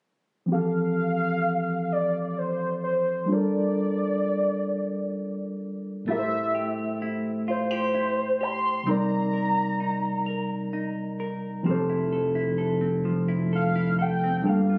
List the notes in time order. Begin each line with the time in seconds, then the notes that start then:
0.46 F3 C4
0.50 E3 G4 A4 F5
1.92 D5
2.38 C5
2.84 C5
3.26 G3 D4 F4
3.32 A4 A#4 D5
6.05 A2 A3 E4
6.10 G4 A#4 E5
6.19 C5
6.55 G4
7.02 E4
7.48 F4 C5
7.71 G4
7.95 E4
8.41 G4 C6
8.83 C3 G3 C4 D#4
8.89 A#4 D5 A#5
9.33 A#4
9.80 D#4
10.26 A#4
10.73 D#4
11.20 A#4
11.63 F3 C4
11.67 F1 G4 A4 C5
11.90 E4
12.12 A4
12.35 E4
12.58 A4
12.81 C4
13.05 F3
13.28 E4
13.53 A4 F5
13.76 E4
13.99 A4 G5
14.24 C4
14.41 G3 D4 A4
14.46 G1 G3 A#3 F5
14.70 F4